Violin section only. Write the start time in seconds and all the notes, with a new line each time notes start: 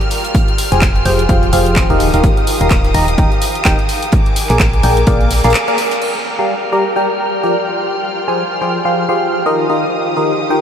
Already playing: F6
0.11 F4 G5
2.00 G4 F5 D#6
4.13 A#4 G#5 D6
6.02 A#4 G5 F6
7.67 F4
9.56 G4 F5 D#6